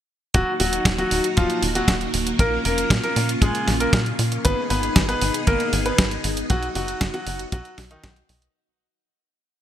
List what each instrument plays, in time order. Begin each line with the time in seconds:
0.34 analog synth bass D#1, grand piano F#3 F#4, string machine A#3 D#4 F#4, kick, closed hi-hat
0.60 analog synth bass D#1, grand piano F#3 F#4, open hi-hat
0.73 closed hi-hat
0.85 analog synth bass D#1, kick, snare, closed hi-hat
0.98 grand piano F#3 F#4, closed hi-hat
1.11 analog synth bass D#1, open hi-hat
1.24 closed hi-hat
1.37 analog synth bass D#1, grand piano F3 F4, kick, closed hi-hat
1.50 closed hi-hat
1.62 analog synth bass D#1, open hi-hat
1.75 grand piano F#3 F#4, closed hi-hat
1.88 analog synth bass D#1, kick, snare, closed hi-hat
2.01 closed hi-hat
2.14 analog synth bass D#1, open hi-hat
2.27 closed hi-hat
2.39 analog synth bass A#1, grand piano A#3 A#4, string machine C#4 F4, kick, closed hi-hat
2.65 analog synth bass F1, grand piano A#3 A#4, open hi-hat
2.78 closed hi-hat
2.90 analog synth bass A#2, kick, snare, closed hi-hat
3.03 grand piano A#3 A#4, closed hi-hat
3.16 analog synth bass A#2, open hi-hat
3.29 closed hi-hat
3.42 analog synth bass A#1, grand piano G#3 G#4, kick, closed hi-hat
3.55 closed hi-hat
3.68 analog synth bass A#1, snare, open hi-hat
3.80 grand piano A#3 A#4, closed hi-hat
3.93 analog synth bass A#2, kick, snare, closed hi-hat
4.06 closed hi-hat
4.19 analog synth bass A#2, open hi-hat
4.32 closed hi-hat
4.45 analog synth bass G#1, string machine B3 D#4 G#4, grand piano B3 B4, kick, closed hi-hat
4.70 analog synth bass G#1, grand piano B3 B4, open hi-hat
4.83 closed hi-hat
4.96 analog synth bass G#1, kick, snare, closed hi-hat
5.09 grand piano B3 B4, closed hi-hat
5.21 analog synth bass G#1, open hi-hat
5.34 closed hi-hat
5.47 analog synth bass G#1, grand piano A#3 A#4, kick, closed hi-hat
5.60 closed hi-hat
5.73 analog synth bass G#1, open hi-hat
5.86 grand piano B3 B4, closed hi-hat
5.98 analog synth bass G#1, kick, snare, closed hi-hat
6.11 closed hi-hat
6.24 analog synth bass G#1, open hi-hat
6.37 closed hi-hat
6.50 analog synth bass B1, grand piano F#3 F#4, string machine F#4, kick, closed hi-hat
6.63 closed hi-hat
6.75 analog synth bass F#1, grand piano F#3 F#4, open hi-hat
6.88 closed hi-hat
7.01 analog synth bass F#1, kick, snare, closed hi-hat
7.14 grand piano F#3 F#4, closed hi-hat
7.27 analog synth bass F#1, open hi-hat
7.39 closed hi-hat
7.52 analog synth bass B1, grand piano F#3 F#4, kick, closed hi-hat
7.65 closed hi-hat
7.78 analog synth bass B1, snare, open hi-hat
7.91 grand piano D#3 D#4, closed hi-hat
8.04 analog synth bass B1, kick, snare, closed hi-hat
8.16 closed hi-hat
8.29 analog synth bass B1, open hi-hat
8.42 closed hi-hat